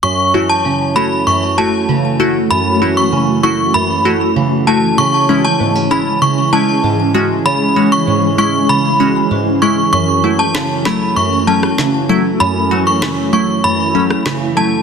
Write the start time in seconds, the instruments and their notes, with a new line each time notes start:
0.03 nylon-string guitar F#2 C#4, synth pluck F#2, ambient pad E3 A3 C#4 F#4, synth bell C#6
0.34 nylon-string guitar E3, synth pluck A3 E4 F#4
0.49 synth bell A5
0.65 synth pluck C#3, nylon-string guitar C#4
0.96 nylon-string guitar A3, synth pluck A3 E4 F#4, synth bell B5
1.27 synth pluck F#2, nylon-string guitar E3, synth bell C#6
1.58 nylon-string guitar A3, synth pluck A3 E4 F#4, synth bell A5
1.89 synth pluck C#3, nylon-string guitar E3
2.20 synth pluck A3 E4 F#4, nylon-string guitar A3
2.51 nylon-string guitar F#2 C#4, synth pluck F#2, synth bell B5
2.82 nylon-string guitar E3, synth pluck A3 E4 F#4
2.97 synth bell C#6
3.12 synth pluck C#3, nylon-string guitar C#4
3.43 nylon-string guitar A3, synth pluck A3 E4 F#4, synth bell C#6
3.74 synth pluck F#2, nylon-string guitar E3, synth bell B5
4.05 synth pluck A3 E4 F#4, nylon-string guitar A3
4.36 synth pluck C#3, nylon-string guitar E3
4.67 nylon-string guitar A3, synth pluck A3 E4 F#4, synth bell A5
4.98 nylon-string guitar C#3 C#4, synth pluck C#3, ambient pad G#3 G#4, synth bell C#6
5.29 nylon-string guitar E3, synth pluck G#3 C#4 E4
5.45 synth bell A5
5.60 synth pluck G#2, nylon-string guitar B3
5.75 nylon-string guitar C#4
5.91 nylon-string guitar G#3, synth pluck G#3 C#4 E4, synth bell B5
6.22 synth pluck C#3, nylon-string guitar E3, synth bell C#6
6.53 nylon-string guitar G#3, synth pluck G#3 C#4 E4, synth bell A5
6.84 synth pluck G#2, nylon-string guitar E3
7.14 synth pluck G#3 C#4 F#4, nylon-string guitar G#3
7.45 nylon-string guitar C#3 C#4, synth pluck C#3, synth bell B5
7.76 nylon-string guitar E3, synth pluck G#3 C#4 F#4
7.92 synth bell C#6
8.07 synth pluck G#2, nylon-string guitar C#4
8.38 nylon-string guitar G#3, synth pluck G#3 C#4 E4, synth bell C#6
8.69 synth pluck C#3, nylon-string guitar E3, synth bell B5
9.00 synth pluck G#3 C#4 F#4, nylon-string guitar G#3
9.31 synth pluck G#2, nylon-string guitar E3
9.62 nylon-string guitar G#3, synth pluck G#3 C#4 E4, synth bell C#6
9.93 nylon-string guitar F#2 C#4, synth pluck F#2, ambient pad A3 F#4, synth bell C#6
10.24 nylon-string guitar E3, synth pluck F#3 A3 E4
10.39 synth bell A5
10.55 synth pluck C#3, nylon-string guitar C#4, cross-stick, snare
10.85 synth pluck F#3 A3 E4, nylon-string guitar A3, synth bell B5, cross-stick, snare
11.16 synth pluck F#2, nylon-string guitar E3, synth bell C#6
11.47 synth pluck F#3 A3 C#4, nylon-string guitar A3, synth bell A5
11.63 cross-stick
11.78 synth pluck C#3, nylon-string guitar E3, snare
12.09 synth pluck F#3 A3 E4, nylon-string guitar A3
12.40 nylon-string guitar F#2 C#4, synth pluck F#2, ambient pad E4, synth bell B5
12.71 nylon-string guitar E3, synth pluck F#3 A3 F#4
12.87 synth bell C#6
13.02 synth pluck C#3, nylon-string guitar C#4, cross-stick, snare
13.33 synth pluck F#3 A3 E4, nylon-string guitar A3, synth bell C#6
13.64 synth pluck F#2, nylon-string guitar E3, synth bell B5
13.95 synth pluck F#3 A3 C#4, nylon-string guitar A3
14.11 cross-stick
14.26 synth pluck C#3, nylon-string guitar E3, cross-stick, snare
14.57 synth pluck F#3 A3 E4, nylon-string guitar A3, synth bell A5